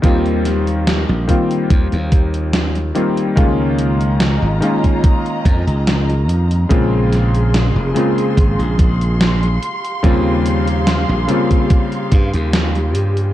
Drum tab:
HH |xxxxx-xxxxxxxxxx|x-xxx-xxxxxxxxxx|x-xxx-xxxxxxxxxx|x-xxx-xxxxxxxxxx|
SD |--o-o-------o---|----o-------o---|--o-o-------o---|----o-------o---|
BD |o-----o-o-o-----|o------oo-o-----|o-------o-o-----|o------oo-o-----|